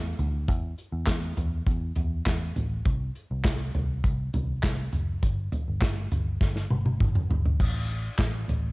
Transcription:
Already playing: picked electric bass E2
0.19 picked electric bass D2, closed hi-hat, floor tom
0.48 picked electric bass E2, kick, closed hi-hat
0.78 closed hi-hat
0.92 picked electric bass E2
1.07 picked electric bass E2, kick, snare, clap, closed hi-hat
1.37 picked electric bass E2, closed hi-hat, floor tom
1.66 picked electric bass E2, kick, closed hi-hat
1.95 picked electric bass E2, closed hi-hat, floor tom
2.26 picked electric bass E2, kick, snare, clap, closed hi-hat
2.56 picked electric bass A1, closed hi-hat, floor tom
2.85 picked electric bass C2, kick, closed hi-hat
3.15 closed hi-hat
3.31 picked electric bass C2
3.45 kick, snare, clap, closed hi-hat
3.74 picked electric bass C2, closed hi-hat, floor tom
4.04 picked electric bass C2, kick, closed hi-hat
4.33 picked electric bass C2, closed hi-hat, floor tom
4.63 picked electric bass C2, kick, snare, clap, closed hi-hat
4.93 picked electric bass F#1, closed hi-hat, floor tom
5.23 picked electric bass G1, kick, closed hi-hat
5.52 closed hi-hat, floor tom
5.68 picked electric bass G1
5.82 picked electric bass G1, kick, snare, clap, closed hi-hat
6.11 picked electric bass G1, closed hi-hat, floor tom
6.41 picked electric bass G1, kick, snare
6.56 snare
6.70 picked electric bass G1, high tom
6.86 high tom
7.00 picked electric bass G1, kick, mid tom
7.15 mid tom
7.30 picked electric bass G1, floor tom
7.45 floor tom
7.60 picked electric bass A1, kick, crash
7.90 closed hi-hat
8.19 picked electric bass A1, kick, snare, clap, closed hi-hat
8.48 picked electric bass A1, closed hi-hat, floor tom

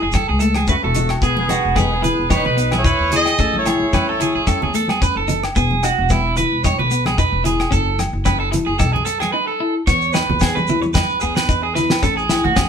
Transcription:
0.03 upright bass F#1, clean electric guitar G#4
0.12 clean electric guitar A4, muted clean electric guitar stroke, kick, cross-stick, high conga, low agogo, shekere
0.29 upright bass C#2, clean electric guitar G#4
0.40 clean electric guitar A3 A4, closed hi-hat, shekere
0.55 clean electric guitar G#4, cross-stick, high conga, low agogo
0.67 horn section A3 F#4, tenor saxophone A3, clean electric guitar C#4 B4, kick, shekere
0.82 upright bass E1, horn section A3 F#4, tenor saxophone A3, clean electric guitar A4
0.95 clean electric guitar D#4, closed hi-hat, low conga, shekere
1.09 cross-stick, low agogo
1.22 upright bass E1, clean electric guitar B3 G#4, horn section B3 G#4, tenor saxophone B3, kick, shekere
1.37 horn section B3 G#4, tenor saxophone B3, high conga
1.49 clean electric guitar D#4 F#4, cross-stick, closed hi-hat, high conga, low agogo, shekere
1.65 upright bass E1
1.76 clean electric guitar B3 G#4, horn section D#4 B4, tenor saxophone D#4, kick, cross-stick, high conga, low agogo, shekere
1.91 horn section B3 G#4
1.95 tenor saxophone B3
2.02 clean electric guitar E4 B4, closed hi-hat, low conga, shekere
2.19 upright bass E1
2.30 clean electric guitar D#4 C#5, horn section D#4 B4, kick, cross-stick, high conga, low agogo, shekere
2.35 tenor saxophone D#4
2.45 upright bass B1, clean electric guitar B4, low conga
2.57 clean electric guitar B3, closed hi-hat, shekere
2.71 tenor saxophone E4, horn section E4, clean electric guitar G#4, cross-stick, high conga, low agogo
2.77 horn section C#5
2.84 clean electric guitar D#4 B4, kick, shekere
3.00 upright bass D#2
3.11 clean electric guitar E4 G#4, tenor saxophone G#4, closed hi-hat, low conga, shekere
3.15 horn section G#4 D#5
3.25 cross-stick, low agogo
3.38 upright bass A1, clean electric guitar C#4 A4, kick, shekere
3.54 horn section E4 C#5, tenor saxophone E4, high conga
3.65 clean electric guitar E4 G#4, horn section E4 C#5, tenor saxophone E4, cross-stick, closed hi-hat, high conga, low agogo, shekere
3.79 upright bass A1
3.93 clean electric guitar C#4 B4, kick, cross-stick, high conga, low agogo, shekere
4.09 clean electric guitar A4
4.20 clean electric guitar E4 G#4, closed hi-hat, low conga, shekere
4.35 upright bass A1, clean electric guitar G#4
4.47 clean electric guitar C#4 A4, kick, cross-stick, high conga, low agogo, shekere
4.62 upright bass E2, clean electric guitar G#4, low conga
4.74 clean electric guitar A3 A4, closed hi-hat, shekere
4.88 clean electric guitar G#4, cross-stick, high conga, low agogo
5.01 clean electric guitar C#4 B4, kick, shekere
5.16 upright bass F#1, clean electric guitar A4
5.28 clean electric guitar D#4, closed hi-hat, low conga, shekere
5.44 cross-stick, low agogo
5.56 upright bass E1, clean electric guitar B3 G#4, kick, shekere
5.71 high conga
5.83 clean electric guitar D#4 F#4, cross-stick, closed hi-hat, low agogo, shekere
5.99 upright bass E1
6.10 clean electric guitar B3 E4, kick, cross-stick, high conga, low agogo, shekere
6.37 clean electric guitar E4 B4, closed hi-hat, low conga, shekere
6.52 upright bass E1
6.64 clean electric guitar D#4 C#5, kick, cross-stick, high conga, low agogo, shekere
6.79 upright bass B1, clean electric guitar B4, low conga
6.91 clean electric guitar B3, closed hi-hat, shekere
7.06 clean electric guitar G#4, cross-stick, high conga, low agogo
7.18 clean electric guitar D#4 B4, kick, shekere
7.32 upright bass E1
7.44 clean electric guitar E4 G#4, closed hi-hat, low conga, shekere
7.60 cross-stick, low agogo
7.71 upright bass F#1, clean electric guitar C#4 A4, kick, shekere
7.99 cross-stick, closed hi-hat, high conga, low agogo, shekere
8.13 upright bass F#1
8.25 clean electric guitar C#4 B4, kick, cross-stick, high conga, low agogo, shekere
8.40 clean electric guitar A4
8.51 clean electric guitar E4, muted clean electric guitar stroke, closed hi-hat, low conga, shekere
8.66 upright bass F#1, clean electric guitar G#4
8.79 upright bass B1, clean electric guitar D#4 A4, kick, cross-stick, high conga, low agogo, shekere
8.93 upright bass F#2, clean electric guitar G#4, low conga
9.05 clean electric guitar A4, muted clean electric guitar stroke, closed hi-hat, shekere
9.20 clean electric guitar G#4, cross-stick, high conga, low agogo
9.33 clean electric guitar D#4 B4
9.47 clean electric guitar A4
9.60 clean electric guitar E4
9.87 upright bass E2, clean electric guitar B3 C#5, kick, snare, shekere
10.02 shekere
10.13 clean electric guitar D#4 B4, snare, low agogo, shekere
10.29 upright bass E2, low conga
10.40 clean electric guitar B3 G#4, kick, snare, low agogo, shekere
10.55 clean electric guitar B4, high conga, shekere
10.68 clean electric guitar E4, low conga, shekere
10.82 muted clean electric guitar stroke, high conga, shekere
10.94 clean electric guitar D#4 B4, kick, snare, high conga, low agogo, shekere
11.09 shekere
11.21 upright bass E2, clean electric guitar B3 G#4, shekere
11.35 clean electric guitar B4, snare, low agogo, shekere
11.49 clean electric guitar D#4, kick, shekere
11.63 clean electric guitar G#4
11.75 clean electric guitar E4 B4, snare, low conga, shekere
11.90 snare, low agogo
12.02 upright bass A1, clean electric guitar C#4 A4, kick, snare, shekere
12.17 clean electric guitar G#4, shekere
12.29 clean electric guitar E4, snare, low agogo, shekere
12.44 upright bass A1, clean electric guitar F#4, low conga
12.56 clean electric guitar C#4 G#4, kick, snare, low agogo, shekere

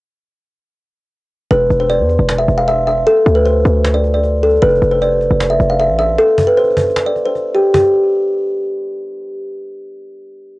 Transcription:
1.51 808-style bass E1, kalimba B4, cajon slap
1.70 808-style bass E1, cajon slap
1.80 kalimba C5
1.90 kalimba D5, cajon slap
1.99 808-style bass E2
2.09 cajon slap
2.19 808-style bass E1
2.29 cajon slap
2.38 kalimba E5
2.48 808-style bass E1, cajon slap
2.58 kalimba F5
2.68 kalimba E5, cajon slap
2.87 kalimba E5, cajon slap
3.07 kalimba A4, cajon slap
3.26 808-style bass D2, cajon slap
3.35 kalimba B4
3.46 kalimba C5, cajon slap
3.65 808-style bass D2, cajon slap
3.85 cajon slap
3.94 kalimba D5
4.04 cajon slap
4.14 kalimba D5
4.24 cajon slap
4.43 kalimba A4, cajon slap
4.50 cajon slap
4.56 cajon slap
4.62 808-style bass F1, kalimba B4, cajon slap
4.69 cajon slap
4.75 cajon slap
4.82 808-style bass F1, cajon slap
4.91 kalimba C5
5.01 kalimba D5, cajon slap
5.21 cajon slap
5.31 808-style bass F1
5.40 cajon slap
5.50 kalimba E5
5.60 808-style bass F1, cajon slap
5.70 kalimba F5
5.79 kalimba E5, cajon slap
5.89 808-style bass A1
5.99 kalimba E5, cajon slap
6.18 kalimba A4, cajon slap
6.38 cajon bass
6.47 kalimba B4
6.57 kalimba C5, cajon slap
6.64 cajon slap
6.70 cajon slap
6.77 cajon bass
6.83 cajon slap
6.87 cajon slap
6.90 cajon slap
6.96 cajon slap
7.06 kalimba D5
7.16 cajon slap
7.25 kalimba C5
7.35 cajon slap
7.55 kalimba G4
7.74 kalimba G4, cajon bass

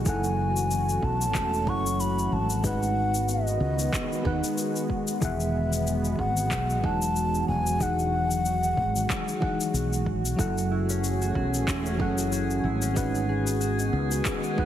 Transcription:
Already playing: analog synth pad E3 F#4
0.05 fretless electric bass F#1, fm electric piano F#3 E4 A4, analog synth pad A3 C#4, flute G#5, kick, shaker
0.09 fm electric piano F#5
0.24 shaker
0.57 shaker
0.71 shaker
0.89 shaker
1.02 fretless electric bass B1, flute A5, kick
1.22 shaker
1.35 fretless electric bass E1, kick, clap, shaker
1.54 shaker
1.66 fretless electric bass F#1, fm electric piano F#3 E4 A4 F#5, flute C#6, kick
1.86 shaker
2.00 flute B5, shaker
2.19 shaker
2.32 fretless electric bass G#1, flute A5
2.50 shaker
2.63 analog synth pad D#3 G#3 B3, fm electric piano G#3 D#4 B4 F#5, flute F#5, kick, shaker
2.83 shaker
3.15 shaker
3.29 flute D#5, shaker
3.47 shaker
3.60 fretless electric bass C#2
3.79 shaker
3.93 kick, clap, shaker
4.13 shaker
4.23 fretless electric bass D#2, fm electric piano G#3 D#4 B4 F#5, kick
4.44 shaker
4.58 shaker
4.76 shaker
4.90 kick
5.08 shaker
5.21 fretless electric bass E1, fm electric piano D#3 E3 G#4, analog synth pad F#3 B3 F#4, flute E5, kick, shaker
5.25 fm electric piano F#5
5.40 shaker
5.73 shaker
5.87 shaker
6.05 shaker
6.19 fretless electric bass G#1, flute F#5, kick
6.37 shaker
6.51 fretless electric bass B1, kick, clap, shaker
6.70 shaker
6.82 fretless electric bass E1, fm electric piano E3 G#3 D#4 F#5, flute A5, kick
7.02 shaker
7.16 shaker
7.35 shaker
7.48 fretless electric bass E1, flute G#5
7.67 shaker
7.79 fm electric piano E3 D#4 G#4 F#5, flute F#5, kick, shaker
7.99 shaker
8.31 shaker
8.46 shaker
8.63 shaker
8.77 fretless electric bass G#1, kick
8.96 shaker
9.10 kick, clap, shaker
9.28 shaker
9.40 fm electric piano E3 D#4 G#4 F#5, kick
9.61 shaker
9.74 fretless electric bass B1, shaker
9.93 shaker
10.06 fretless electric bass G#1, kick
10.25 fretless electric bass B1, shaker
10.36 fretless electric bass F#1, analog synth pad E3 A3 C#4, fm electric piano F#3 E4 A4 F#5, harp F#4, synth texture G#4 G#5, kick, shaker
10.58 shaker
10.71 harp E4
10.90 harp C#4, shaker
11.04 shaker
11.22 harp F#4, shaker
11.35 fretless electric bass B1, harp F#4, kick
11.54 shaker
11.68 fretless electric bass E1, harp E4, kick, clap, shaker
11.86 harp C#4, shaker
11.98 fretless electric bass F#1, fm electric piano F#3 E4 A4 F#5, kick
12.18 harp F#4, shaker
12.32 harp F#4, shaker
12.51 shaker
12.64 fretless electric bass G#1, harp E4
12.82 harp C#4, shaker
12.94 analog synth pad D#3 G#3 B3, fm electric piano G#3 D#4 B4 F#5, kick, shaker
13.15 harp G#4, shaker
13.29 harp G#4
13.47 shaker
13.61 harp F#4, shaker
13.79 harp D#4, shaker
13.93 fretless electric bass C#2
14.11 harp G#4, shaker
14.25 harp G#4, kick, clap, shaker
14.44 shaker
14.56 fretless electric bass D#2, fm electric piano G#3 D#4 B4 F#5, harp F#4, kick

